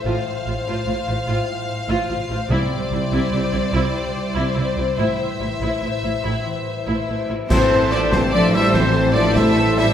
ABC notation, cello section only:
X:1
M:12/8
L:1/8
Q:3/8=97
K:Am
V:1 name="Cello section" clef=bass
A,, z A,, A,, A,, A,, A,, z2 A,, A,, A,, | C, z C, C, C, C, C, z2 C, C, C, | A,, z A,, A,, A,, A,, A,, z2 A,, A,, A,, | E,2 F, E, F, G, E,2 F, A,2 G, |]